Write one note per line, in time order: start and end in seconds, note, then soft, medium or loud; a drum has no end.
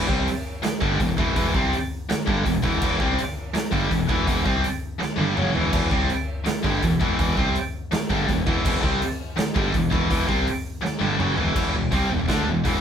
0.07 0.26 C2 loud
0.07 0.26 C3 medium
0.07 0.26 G3 medium
0.07 0.26 C4 loud
0.07 kick loud
0.28 open hi-hat medium
0.63 muted distorted electric guitar stroke medium
0.63 muted picked electric bass stroke soft
0.63 snare loud
0.63 open hi-hat medium
0.81 0.99 G1 medium
0.81 0.99 G2 medium
0.81 0.99 D3 medium
0.81 0.99 G3 loud
0.81 kick loud
0.99 1.17 E1 medium
0.99 1.14 E2 medium
0.99 1.15 B2 medium
0.99 kick medium
0.99 open hi-hat medium
1.18 1.35 E1 medium
1.18 1.35 E2 medium
1.18 1.36 B2 medium
1.18 1.36 E3 loud
1.18 kick loud
1.36 1.53 E1 medium
1.36 1.54 E2 medium
1.36 1.54 B2 loud
1.36 1.55 E3 loud
1.36 kick loud
1.36 open hi-hat medium
1.54 1.72 C2 medium
1.54 1.72 C3 medium
1.54 1.73 G3 medium
1.54 1.73 C4 loud
1.54 kick loud
1.73 open hi-hat medium
2.09 muted distorted electric guitar stroke medium
2.09 muted picked electric bass stroke soft
2.09 snare loud
2.09 open hi-hat soft
2.26 2.45 G1 medium
2.26 2.43 G2 loud
2.26 2.44 D3 loud
2.26 2.45 G3 loud
2.26 kick loud
2.44 2.63 E1 medium
2.44 2.59 E2 medium
2.44 2.60 B2 medium
2.44 kick medium
2.44 open hi-hat medium
2.62 2.80 E1 loud
2.62 2.80 E2 medium
2.62 2.81 B2 loud
2.62 2.81 E3 loud
2.62 kick loud
2.82 2.99 E1 medium
2.82 2.99 E2 medium
2.82 3.00 B2 medium
2.82 3.00 E3 loud
2.82 kick loud
2.82 crash medium
3.00 3.17 C2 medium
3.00 3.18 C3 medium
3.00 3.18 G3 loud
3.00 3.18 C4 loud
3.00 kick loud
3.19 open hi-hat medium
3.54 muted picked electric bass stroke soft
3.54 muted distorted electric guitar stroke medium
3.54 snare loud
3.54 open hi-hat medium
3.71 3.90 G1 loud
3.71 3.89 G2 medium
3.71 3.90 D3 loud
3.71 3.90 G3 loud
3.71 kick medium
3.90 4.08 E1 medium
3.90 4.05 E2 medium
3.90 4.05 B2 medium
3.90 kick medium
3.90 open hi-hat medium
4.09 4.26 E1 loud
4.09 4.25 E2 medium
4.09 4.26 B2 loud
4.09 4.26 E3 loud
4.09 kick loud
4.26 4.44 E1 medium
4.26 4.44 E2 medium
4.26 4.45 B2 medium
4.26 4.45 E3 medium
4.26 kick loud
4.26 open hi-hat medium
4.45 4.63 C2 loud
4.45 4.63 C3 medium
4.45 4.63 G3 medium
4.45 4.64 C4 loud
4.45 kick loud
4.64 open hi-hat medium
4.99 muted distorted electric guitar stroke medium
4.99 muted picked electric bass stroke soft
4.99 snare medium
5.16 5.35 G1 medium
5.16 5.34 G2 medium
5.16 5.35 D3 loud
5.16 5.35 G3 loud
5.16 high tom medium
5.34 5.54 F#1 medium
5.34 5.52 F#2 medium
5.34 5.53 C#3 medium
5.34 5.53 F#3 loud
5.34 mid tom medium
5.53 5.72 E1 medium
5.53 5.70 E2 medium
5.53 5.70 B2 medium
5.53 5.71 E3 loud
5.53 floor tom medium
5.71 5.90 E1 medium
5.71 5.90 E2 medium
5.71 5.89 B2 medium
5.71 5.89 E3 medium
5.71 kick loud
5.71 crash loud
5.89 6.08 C2 medium
5.89 6.08 C3 medium
5.89 6.08 G3 medium
5.89 6.09 C4 medium
5.89 kick loud
6.10 open hi-hat soft
6.45 muted distorted electric guitar stroke medium
6.45 muted picked electric bass stroke soft
6.45 snare loud
6.45 open hi-hat medium
6.63 6.81 G1 medium
6.63 6.81 G2 loud
6.63 6.82 D3 loud
6.63 6.82 G3 loud
6.63 kick medium
6.82 7.00 E1 medium
6.82 6.97 E2 medium
6.82 6.97 B2 medium
6.82 kick medium
6.82 open hi-hat medium
6.99 7.18 E1 medium
6.99 7.17 E2 medium
6.99 7.17 B2 medium
6.99 7.18 E3 medium
6.99 kick loud
7.18 7.36 E1 loud
7.18 7.36 E2 medium
7.18 7.35 B2 medium
7.18 7.36 E3 loud
7.18 kick loud
7.18 open hi-hat medium
7.36 7.54 C2 medium
7.36 7.54 C3 loud
7.36 7.54 G3 medium
7.36 7.55 C4 loud
7.36 kick medium
7.56 open hi-hat medium
7.92 muted distorted electric guitar stroke medium
7.92 muted picked electric bass stroke soft
7.92 snare loud
7.92 open hi-hat medium
8.10 8.27 G1 medium
8.10 8.27 G2 medium
8.10 8.28 D3 loud
8.10 8.28 G3 loud
8.10 kick medium
8.28 8.45 E1 medium
8.28 8.43 E2 medium
8.28 8.43 B2 medium
8.28 kick medium
8.28 open hi-hat medium
8.46 8.64 E1 medium
8.46 8.61 E2 medium
8.46 8.62 B2 loud
8.46 8.63 E3 loud
8.46 kick loud
8.63 8.82 E1 medium
8.63 8.81 E2 medium
8.63 8.80 B2 loud
8.63 8.81 E3 loud
8.63 kick loud
8.63 crash medium
8.81 9.00 C2 loud
8.81 8.99 C3 loud
8.81 9.00 G3 loud
8.81 9.00 C4 loud
8.81 kick loud
9.02 open hi-hat medium
9.37 muted distorted electric guitar stroke medium
9.37 muted picked electric bass stroke soft
9.37 snare loud
9.37 open hi-hat soft
9.54 9.73 G1 medium
9.54 9.72 G2 loud
9.54 9.73 D3 medium
9.54 9.73 G3 loud
9.54 kick loud
9.73 9.91 E1 medium
9.73 9.88 E2 medium
9.73 9.88 B2 medium
9.73 kick medium
9.73 open hi-hat medium
9.90 10.10 E1 medium
9.90 10.07 E2 loud
9.90 10.08 B2 medium
9.90 10.08 E3 medium
9.90 kick loud
10.08 10.28 E1 medium
10.08 10.27 E2 medium
10.08 10.26 B2 loud
10.08 10.26 E3 medium
10.08 kick loud
10.08 open hi-hat medium
10.26 10.46 C2 medium
10.26 10.45 C3 medium
10.26 10.45 G3 loud
10.26 10.46 C4 loud
10.26 kick loud
10.47 open hi-hat medium
10.82 muted distorted electric guitar stroke medium
10.82 muted picked electric bass stroke soft
10.82 snare medium
10.99 11.18 G1 medium
10.99 11.17 G2 medium
10.99 11.17 D3 medium
10.99 11.18 G3 medium
10.99 mid tom medium
11.17 11.36 F#1 loud
11.17 11.35 F#2 medium
11.17 11.35 C#3 medium
11.17 11.36 F#3 loud
11.17 mid tom medium
11.35 11.55 E1 medium
11.35 11.53 E2 medium
11.35 11.53 B2 loud
11.35 11.54 E3 loud
11.35 floor tom medium
11.54 11.73 E1 medium
11.54 11.72 E2 medium
11.54 11.72 B2 medium
11.54 11.73 E3 medium
11.54 kick loud
11.54 crash loud
11.73 11.91 E1 medium
11.73 11.88 E2 medium
11.73 11.89 B2 medium
11.91 12.09 C2 medium
11.91 12.09 C3 loud
11.91 12.10 G3 loud
11.91 12.10 C4 medium
11.91 kick medium
11.91 open hi-hat soft
12.10 12.27 E1 medium
12.10 12.25 E2 medium
12.10 12.25 B2 medium
12.28 12.46 D2 medium
12.28 12.45 D3 medium
12.28 12.46 A3 medium
12.28 12.47 D4 loud
12.28 kick loud
12.28 snare loud
12.28 open hi-hat medium
12.45 12.64 E1 medium
12.45 12.61 E2 medium
12.45 12.61 B2 medium
12.64 12.81 E1 medium
12.64 12.81 E2 medium
12.64 12.81 B2 medium
12.64 12.81 E3 medium
12.64 kick loud
12.64 open hi-hat medium